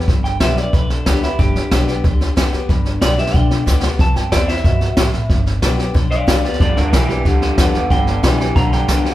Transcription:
0.00 snare
0.08 G1 G2, kick, snare
0.24 G5, snare
0.40 B1 D3 G3 B3 G4 E5, kick, snare, hi-hat pedal
0.57 B3 G4 D5, snare
0.73 B1 D3 B4, kick, snare
0.90 A4, snare
1.06 D2 D3 G3 B3 G4, kick, snare, hi-hat pedal
1.22 B3 E4 G4, snare
1.39 G1 G2 G4, kick, snare
1.55 D2, snare
1.71 B1 D3 G3 B3 G4, kick, snare, hi-hat pedal
1.88 B3 G4, snare
2.04 D2 D3, kick, snare
2.21 snare
2.36 E2 D3 G3 B3 G4, kick, snare, hi-hat pedal
2.53 E2 B3 G4, snare
2.69 G1 G2, kick, snare
2.85 snare
3.01 B1 D3 G3 B3 G4 D5, kick, snare, hi-hat pedal
3.18 B3 G4 E5, snare
3.26 snare
3.34 B1 D3 G5, kick, snare
3.50 snare
3.66 D2 D3 G3 B3 G4, kick, snare, hi-hat pedal
3.83 B3 G4, snare
3.99 C2 C3 A5, kick, snare
4.16 G2 G5, snare
4.32 E2 E3 G3 C4 E4 D5, kick, snare, hi-hat pedal
4.48 C4 E4 E5, snare
4.56 snare
4.64 G2 B2, kick, snare
4.81 snare
4.97 A2, kick, snare, hi-hat pedal
5.13 A2, snare
5.30 G1 G2, kick, snare
5.46 snare
5.62 B1 D3 G3 B3 G4, kick, snare, hi-hat pedal
5.78 B3 G4, snare
5.94 B1 D3, kick, snare
6.11 D5 F5, snare
6.27 D2 D3 G3 B3 G4 D5 F5, kick, snare, hi-hat pedal
6.44 B3 F4 G4 D5, snare
6.53 snare
6.60 G1 G2 D3 F4 D5, kick, snare
6.76 D2 G2 D3 D4 A#4, snare
6.93 B1 G2 D3 E3 G3 B3 D4 G4 A#4, kick, snare, hi-hat pedal
7.09 G2 E3 B3 G4, snare
7.25 D2 G2 D3, kick, snare
7.42 G2 D3, snare
7.58 E2 G2 D3 G3 B3 G4, kick, snare, hi-hat pedal
7.74 E2 G2 D3 B3 G4, snare
7.90 G1 G2 D3 G5, kick, snare
8.07 G2 D3, snare
8.23 B1 G2 D3 E3 G3 B3 G4, kick, snare, hi-hat pedal
8.40 G2 E3 B3 G4, snare
8.56 B1 G2 D3 A#5, kick, snare
8.72 G2 D3 G5, snare
8.88 E2 G2 D3 G3 B3 G4, kick, snare, hi-hat pedal
9.05 G2 D3 B3 G4, snare

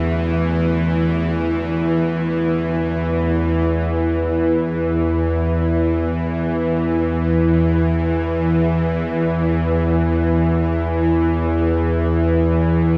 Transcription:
Already playing: E2 D3 E3 A3 E4 F#4
3.68 E2 E3

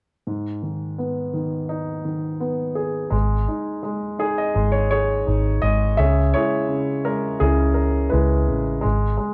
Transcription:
0.27 G#2
0.62 D#3
0.98 B3
1.33 D#3
1.69 D#4
2.05 D#3
2.40 B3
2.75 G#4
3.10 G#1 G#3
3.48 D#4
3.83 G#3
4.19 D#4 G#4
4.38 D#5
4.54 G#1 G#3
4.72 C#5
4.91 G#4 C#5
5.27 G#1 D#4
5.61 G#1 G#3 D#5
5.97 C#2 C#3 G#4 C#5 E5
6.34 G#3 E4 G#4 C#5
6.68 C#3
7.05 G#3 A#4
7.40 C#2 C#3 C#4 E4 G#4
7.74 A#4
8.10 C#2 G#3 E4 G#4 B4
8.47 A1 C#3
8.81 G#1 G#3
9.18 G#3

